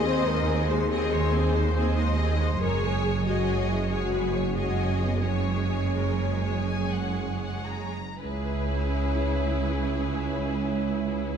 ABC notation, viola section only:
X:1
M:12/8
L:1/8
Q:3/8=87
K:C#dor
V:1 name="Viola section"
[^B,G] [G,D] [B,G] [G,D] [B,G] [G,D] [B,G] [G,D] [B,G] [G,D] [B,G] [G,D] | [G,G]3 [G,G]3 [G,G]3 [G,G]3 | [G,G]8- [G,G]3 z | E12 |]